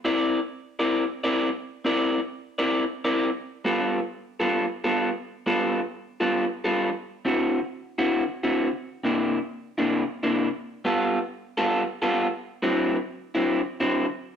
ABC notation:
X:1
M:4/4
L:1/8
Q:"Swing" 1/4=134
K:C
V:1 name="Clean electric guitar"
[CE_Bd] z2 [CEBd] z [CEBd] z2 | [CE_Bd] z2 [CEBd] z [CEBd] z2 | [G,B,FA] z2 [G,B,FA] z [G,B,FA] z2 | [G,B,FA] z2 [G,B,FA] z [G,B,FA] z2 |
[D,CE^F] z2 [D,CEF] z [D,CEF] z2 | [C,_B,DE] z2 [C,B,DE] z [C,B,DE] z2 | [G,B,FA] z2 [G,B,FA] z [G,B,FA] z2 | [D,^F,CE] z2 [D,F,CE] z [D,F,CE] z2 |]